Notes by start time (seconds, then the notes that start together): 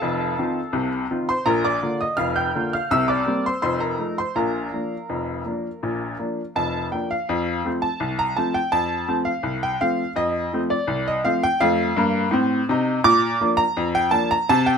Already playing: A4 F5 A5
0.02 F1 F2
0.39 D#3 C4 F4
0.73 C2 C3
1.11 D#3 C4 F4
1.29 C5 C6
1.46 A#1 A#2 A#4 A#5
1.64 D5 D6
1.83 D3 A#3 F4
2.01 D#5 D#6
2.17 F1 F2 F5 F6
2.36 G5 G6
2.55 D3 A#3 F4
2.73 F5 F6
2.91 C2 C3 E5 E6
3.08 D5 D6
3.26 G3 A#3 C4
3.46 C5 C6
3.62 F1 F2 C5 C6
3.80 A#4 A#5
3.98 F3 A3 D#4
4.18 C5 C6
4.36 A#1 A#2 A#4 F5 A#5
4.73 F3 A#3 D4
5.09 F1 F2
5.46 F3 A#3 D4
5.83 A#1 A#2
6.20 F3 A#3 D4
6.56 F1 F2 A5
6.92 F3 A#3 D4 G5
7.11 F5
7.29 F2
7.65 F3 A3 C4
7.82 A5
8.00 C2
8.19 A#5
8.36 F3 A3 C4 A5
8.54 G5
8.72 F2 A5
9.08 F3 A3 C4
9.25 F5
9.43 C2
9.63 G5
9.81 F3 A3 C4 F5
10.16 F2 D#5
10.53 F3 A3 C4
10.70 D5
10.87 C2
11.08 D#5
11.24 F3 A3 C4 F5
11.43 G5
11.60 F2 A3 F5
11.96 G2 A#3
12.31 A2 C4
12.69 C3 D#4
13.04 A#2 D6
13.41 F3 A#3 D4
13.57 A#5
13.77 F2
13.95 G5
14.11 F3 A#3 D4 A5
14.31 A#5
14.49 C3 A5
14.66 G5